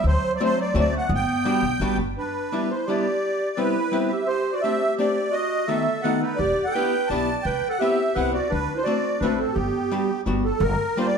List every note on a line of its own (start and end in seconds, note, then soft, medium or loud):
0.04 0.15 D2 medium
0.04 0.29 F#3 medium
0.04 0.33 C5 loud
0.34 0.40 F#3 medium
0.34 0.42 D5 medium
0.40 0.56 F#3 medium
0.40 0.58 A3 medium
0.40 0.58 C4 medium
0.40 0.58 D4 soft
0.40 0.58 F#4 medium
0.40 0.60 C5 loud
0.57 0.73 F#3 medium
0.57 0.77 D5 medium
0.74 0.97 D2 medium
0.74 0.91 F#3 medium
0.74 0.93 A3 medium
0.74 0.93 C4 soft
0.74 0.92 D4 soft
0.74 0.93 F#4 medium
0.79 0.95 D5 medium
0.91 1.08 A3 medium
0.97 1.11 F#5 medium
1.09 1.21 G1 loud
1.09 1.94 B3 medium
1.15 1.97 G5 loud
1.45 1.63 G3 medium
1.45 1.64 B3 soft
1.45 1.64 D4 medium
1.45 1.63 F#4 medium
1.62 1.78 B1 medium
1.80 1.97 A1 medium
1.80 1.99 G3 medium
1.80 1.99 B3 soft
1.80 1.99 D4 medium
1.80 1.99 F#4 medium
1.98 2.14 G1 medium
2.18 2.67 D4 medium
2.18 2.72 B4 medium
2.52 2.70 G3 soft
2.52 2.70 B3 soft
2.52 2.70 D4 soft
2.52 2.70 E4 medium
2.70 2.87 E4 medium
2.70 2.88 C5 medium
2.87 3.06 G3 soft
2.87 3.06 B3 soft
2.87 3.06 D4 medium
2.87 3.06 E4 medium
2.87 3.54 G4 medium
2.87 3.59 D5 medium
3.57 3.76 G3 medium
3.57 3.75 B3 soft
3.57 3.75 C4 soft
3.57 3.76 E4 soft
3.57 4.08 E4 medium
3.57 4.12 B4 medium
3.92 4.10 G3 soft
3.92 4.10 B3 soft
3.92 4.10 C4 soft
3.92 4.11 E4 medium
4.09 4.26 G4 medium
4.09 4.27 E5 medium
4.26 4.52 G4 medium
4.26 4.54 C5 medium
4.52 4.62 F#4 medium
4.52 4.62 D5 medium
4.61 4.81 A3 soft
4.61 4.82 C4 soft
4.61 4.82 D4 soft
4.61 4.95 G4 medium
4.61 4.81 G4 soft
4.61 4.95 E5 loud
4.96 5.16 A3 medium
4.96 5.17 C4 soft
4.96 5.17 D4 medium
4.96 5.30 G4 medium
4.96 5.35 D5 medium
5.00 5.17 G4 medium
5.30 5.65 F#4 medium
5.30 5.69 D#5 medium
5.67 5.87 D#3 soft
5.67 5.86 A3 soft
5.67 5.87 B3 soft
5.67 5.87 D#4 soft
5.67 5.87 F#4 medium
5.67 6.01 A4 medium
5.67 6.04 E5 medium
6.02 6.23 D#3 medium
6.02 6.22 A3 soft
6.02 6.22 B3 medium
6.02 6.23 D#4 soft
6.02 6.23 F#4 soft
6.02 6.20 A4 medium
6.02 6.22 F#5 medium
6.21 6.38 D#4 medium
6.21 6.40 B4 medium
6.36 6.51 E1 medium
6.36 6.64 G4 medium
6.36 6.65 D5 medium
6.64 6.75 A4 medium
6.64 6.74 F#5 medium
6.71 7.09 G5 medium
6.75 6.93 B3 soft
6.75 6.94 D4 soft
6.75 6.93 E4 soft
6.75 6.93 G4 medium
6.75 7.08 B4 medium
7.08 7.33 B1 medium
7.08 7.29 B3 medium
7.08 7.29 D4 soft
7.08 7.29 G4 medium
7.08 7.43 D5 medium
7.08 7.45 A5 medium
7.12 7.29 E4 soft
7.43 7.57 C2 medium
7.43 7.68 B4 medium
7.43 7.68 G5 medium
7.69 7.78 A4 medium
7.69 7.81 F#5 medium
7.79 7.99 B3 medium
7.79 7.99 C4 soft
7.79 7.99 E4 soft
7.79 8.12 G4 medium
7.79 7.99 G4 medium
7.79 8.17 E5 medium
8.15 8.39 C2 medium
8.15 8.34 B3 soft
8.15 8.34 C4 soft
8.15 8.34 E4 medium
8.15 8.34 G4 medium
8.15 8.32 B4 medium
8.15 8.32 F#5 medium
8.33 8.49 F#4 medium
8.33 8.51 D5 medium
8.50 8.63 D2 medium
8.50 8.75 D4 medium
8.50 8.78 B4 medium
8.75 8.83 E4 medium
8.75 8.86 C5 medium
8.83 9.04 A3 medium
8.83 9.04 C4 soft
8.83 9.04 D4 medium
8.83 9.17 F#4 medium
8.83 9.21 D5 medium
8.88 9.04 F#4 soft
9.20 9.44 A1 medium
9.20 9.40 A3 medium
9.20 9.40 C4 medium
9.20 9.37 D4 medium
9.20 9.40 D4 soft
9.20 9.40 B4 medium
9.25 9.40 F#4 medium
9.38 9.55 C4 medium
9.38 9.56 A4 medium
9.53 9.68 G1 medium
9.53 10.22 B3 medium
9.53 10.21 G4 medium
9.91 10.09 G3 medium
9.91 10.10 B3 soft
9.91 10.09 D4 soft
9.91 10.10 F#4 soft
10.26 10.49 G1 medium
10.26 10.45 G3 medium
10.26 10.45 B3 soft
10.26 10.45 D4 soft
10.26 10.45 F#4 medium
10.44 10.62 A4 medium
10.60 10.73 G1 loud
10.60 10.98 A#4 loud
10.97 11.15 G3 soft
10.97 11.15 A#3 medium
10.97 11.16 D4 soft
10.97 11.16 F4 medium
10.97 11.07 C5 medium
11.06 11.18 D5 medium